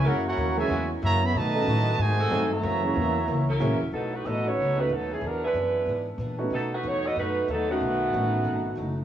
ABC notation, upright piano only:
X:1
M:4/4
L:1/8
Q:"Swing" 1/4=186
K:B
V:1 name="Upright piano"
[F,A,CEG] z2 [F,A,CEG] z4 | z [F,B,CD=A] z4 [F,=A,^B,DA] z | z [F,A,CEG] z4 [F,A,CEG] z | z3 [=A,B,CDF] z [A,B,CDF] z2 |
z6 z [=A,B,CDF] | z6 z [=A,B,CDF] | z2 [=A,B,CDF]3 z3 |]